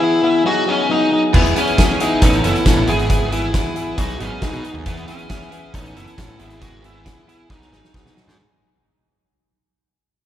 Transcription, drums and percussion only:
1.34 kick, crash
1.45 closed hi-hat
1.56 closed hi-hat
1.67 closed hi-hat
1.78 kick, snare, closed hi-hat
1.90 snare
2.00 closed hi-hat
2.22 kick, closed hi-hat
2.33 closed hi-hat
2.44 closed hi-hat
2.55 closed hi-hat
2.66 kick, snare, closed hi-hat
2.87 closed hi-hat
2.99 closed hi-hat
3.10 kick, closed hi-hat
3.32 closed hi-hat
3.54 kick, snare, closed hi-hat
3.65 snare
3.76 closed hi-hat
3.98 kick, closed hi-hat
4.09 closed hi-hat
4.20 closed hi-hat
4.42 kick, snare, closed hi-hat
4.53 closed hi-hat
4.64 closed hi-hat
4.86 kick, closed hi-hat
4.97 closed hi-hat
5.08 closed hi-hat
5.18 closed hi-hat
5.29 kick, snare, closed hi-hat
5.42 snare
5.52 closed hi-hat
5.74 kick, closed hi-hat
5.85 closed hi-hat
5.96 closed hi-hat
6.07 closed hi-hat
6.18 kick, snare, closed hi-hat
6.39 closed hi-hat
6.50 closed hi-hat
6.61 kick, closed hi-hat
6.84 closed hi-hat
7.06 kick, snare, closed hi-hat
7.29 closed hi-hat
7.50 kick, snare
7.62 snare
7.73 snare
7.84 snare
7.94 kick, snare
8.06 snare
8.17 snare
8.29 snare

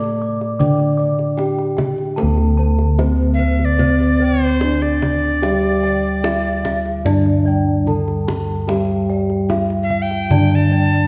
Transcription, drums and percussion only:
0.04 kendang slap
0.41 kendang slap
0.61 kendang low
0.79 kendang slap
1.19 kendang slap
1.39 kendang high
1.58 kendang slap
1.78 kendang high, kendang low
1.98 kendang slap
2.18 kendang high
2.37 kendang slap
2.79 kendang slap
2.99 kendang high, kendang low
3.39 kendang low
3.59 kendang slap
3.79 kendang low
4.00 kendang slap
4.61 kendang high
4.82 kendang slap
5.02 kendang high, kendang low
5.43 kendang high
5.63 kendang slap
6.24 kendang high
6.45 kendang slap
6.65 kendang high, kendang low
6.86 kendang slap
7.06 kendang low
7.26 kendang slap
7.87 kendang low
8.08 kendang slap
8.28 kendang high, kendang low
8.69 kendang high
9.30 kendang slap
9.50 kendang high, kendang low
9.70 kendang slap
9.90 kendang low
10.11 kendang slap
10.31 kendang low
10.51 kendang slap

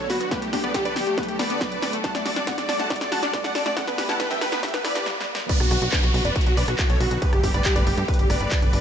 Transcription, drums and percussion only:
0.10 snare, open hi-hat
0.21 closed hi-hat
0.31 kick, snare, closed hi-hat
0.42 closed hi-hat
0.53 kick, snare, open hi-hat
0.64 closed hi-hat
0.74 kick, snare, closed hi-hat
0.85 closed hi-hat
0.96 snare, open hi-hat
1.07 closed hi-hat
1.18 kick, snare, closed hi-hat
1.23 closed hi-hat
1.28 closed hi-hat
1.39 snare, open hi-hat
1.50 closed hi-hat
1.61 kick, snare, closed hi-hat
1.72 closed hi-hat
1.82 snare, open hi-hat
1.93 closed hi-hat
2.04 kick, snare, closed hi-hat
2.15 snare, closed hi-hat
2.26 snare, open hi-hat
2.36 snare, closed hi-hat
2.47 kick, snare, closed hi-hat
2.58 snare, closed hi-hat
2.69 snare, open hi-hat
2.80 snare, closed hi-hat
2.90 kick, snare, closed hi-hat
2.96 closed hi-hat
3.01 snare, closed hi-hat
3.12 snare, open hi-hat
3.23 snare, closed hi-hat
3.33 kick, snare, closed hi-hat
3.44 snare, closed hi-hat
3.55 snare, open hi-hat
3.66 snare, closed hi-hat
3.77 kick, snare, closed hi-hat
3.87 snare, closed hi-hat
3.98 kick, snare, open hi-hat
4.09 snare, closed hi-hat
4.20 kick, snare, closed hi-hat
4.31 snare, closed hi-hat
4.41 snare, open hi-hat
4.52 snare, closed hi-hat
4.63 kick, snare, closed hi-hat
4.68 closed hi-hat
4.74 snare, closed hi-hat
4.85 snare, open hi-hat
4.95 snare, closed hi-hat
5.06 snare
5.21 snare
5.35 snare
5.49 kick, closed hi-hat, ride, crash
5.60 cross-stick, closed hi-hat
5.71 cross-stick, open hi-hat
5.82 closed hi-hat
5.92 kick, clap, closed hi-hat, ride
6.03 closed hi-hat
6.14 open hi-hat
6.25 closed hi-hat
6.36 kick, closed hi-hat, ride
6.41 closed hi-hat
6.46 closed hi-hat
6.57 open hi-hat
6.68 cross-stick, closed hi-hat
6.79 kick, clap, closed hi-hat, ride
6.90 closed hi-hat
7.00 open hi-hat
7.11 closed hi-hat
7.22 kick, closed hi-hat, ride
7.33 cross-stick, closed hi-hat
7.44 kick, open hi-hat
7.54 closed hi-hat
7.65 kick, clap, closed hi-hat, ride
7.76 closed hi-hat
7.87 open hi-hat
7.97 closed hi-hat
8.08 kick, closed hi-hat, ride
8.14 closed hi-hat
8.19 closed hi-hat
8.30 cross-stick, open hi-hat
8.41 closed hi-hat
8.51 kick, clap, closed hi-hat, ride
8.62 closed hi-hat
8.73 open hi-hat

